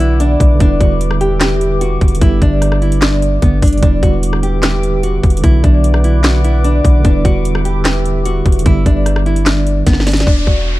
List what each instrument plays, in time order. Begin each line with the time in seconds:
Already playing: 808-style bass B1, tine electric piano D3 F#3 B3 F#4, analog synth pad B4 D5 F#5 D6
0.00 nylon-string guitar E4, closed hi-hat
0.20 nylon-string guitar D4, closed hi-hat
0.40 808-style bass B1, kick, closed hi-hat
0.56 tine electric piano D3 G3
0.60 808-style bass E1, tine electric piano B3, nylon-string guitar D4, analog synth pad E5, kick, closed hi-hat
0.65 tine electric piano E4
0.80 808-style bass E1, nylon-string guitar F#4, kick, closed hi-hat
1.01 closed hi-hat
1.11 cross-stick
1.21 nylon-string guitar G4, closed hi-hat
1.40 nylon-string guitar G4, snare, clap, closed hi-hat
1.61 closed hi-hat
1.81 nylon-string guitar F#4, closed hi-hat
2.01 808-style bass E1, kick, closed hi-hat
2.08 closed hi-hat
2.15 tine electric piano D3, closed hi-hat
2.19 808-style bass G1, tine electric piano G3 B3, nylon-string guitar E4, analog synth pad D5, kick, closed hi-hat
2.26 tine electric piano G4
2.42 808-style bass G1, nylon-string guitar D4, kick, closed hi-hat
2.62 cross-stick, closed hi-hat
2.72 cross-stick
2.82 nylon-string guitar E4, closed hi-hat
2.92 closed hi-hat
3.02 nylon-string guitar D4, snare, clap, closed hi-hat
3.22 closed hi-hat
3.42 808-style bass G1, nylon-string guitar B3, kick, closed hi-hat
3.62 808-style bass G1, nylon-string guitar D4, kick, closed hi-hat, open hi-hat
3.68 closed hi-hat
3.73 closed hi-hat
3.78 tine electric piano D3 G3, closed hi-hat
3.82 808-style bass E1, tine electric piano B3, nylon-string guitar D4, analog synth pad B4 E5 D6, kick, closed hi-hat
3.87 tine electric piano E4
4.03 808-style bass E1, nylon-string guitar F#4, kick, closed hi-hat
4.23 closed hi-hat
4.33 cross-stick
4.43 nylon-string guitar G4, closed hi-hat
4.63 nylon-string guitar G4, snare, clap, closed hi-hat
4.83 closed hi-hat
5.03 nylon-string guitar F#4, closed hi-hat
5.23 808-style bass E1, kick, closed hi-hat
5.30 closed hi-hat
5.37 tine electric piano D3, closed hi-hat
5.41 808-style bass B1, tine electric piano F#3 B3, nylon-string guitar E4, analog synth pad B4 D5 F#5 D6, kick, closed hi-hat
5.48 tine electric piano F#4
5.64 808-style bass B1, nylon-string guitar D4, kick, closed hi-hat
5.84 closed hi-hat
5.94 cross-stick
6.04 nylon-string guitar E4, closed hi-hat
6.24 nylon-string guitar F#4, snare, clap, closed hi-hat
6.44 nylon-string guitar E4, closed hi-hat
6.64 nylon-string guitar D4, closed hi-hat
6.85 808-style bass B1, kick, closed hi-hat
7.00 tine electric piano D3 G3
7.05 808-style bass E1, tine electric piano B3, nylon-string guitar D4, analog synth pad E5, kick, closed hi-hat
7.10 tine electric piano E4
7.25 808-style bass E1, nylon-string guitar F#4, kick, closed hi-hat
7.45 closed hi-hat
7.55 cross-stick
7.65 nylon-string guitar G4, closed hi-hat
7.85 nylon-string guitar G4, snare, clap, closed hi-hat
8.06 closed hi-hat
8.25 nylon-string guitar F#4, closed hi-hat
8.46 808-style bass E1, kick, closed hi-hat
8.52 closed hi-hat
8.59 tine electric piano D3, closed hi-hat
8.64 808-style bass G1, tine electric piano G3 B3, nylon-string guitar E4, analog synth pad D5, kick, closed hi-hat
8.70 tine electric piano G4
8.86 808-style bass G1, nylon-string guitar D4, kick, closed hi-hat
9.06 cross-stick, closed hi-hat
9.16 cross-stick
9.26 nylon-string guitar E4, closed hi-hat
9.36 closed hi-hat
9.46 nylon-string guitar D4, snare, clap, closed hi-hat
9.67 closed hi-hat
9.87 808-style bass G1, nylon-string guitar B3, kick, snare, closed hi-hat
9.93 snare
10.00 snare
10.07 nylon-string guitar D4, snare, closed hi-hat, open hi-hat
10.12 snare, closed hi-hat
10.17 snare, closed hi-hat
10.22 closed hi-hat
10.27 808-style bass E1, nylon-string guitar D4, kick, downlifter
10.47 808-style bass E1, nylon-string guitar F#4, kick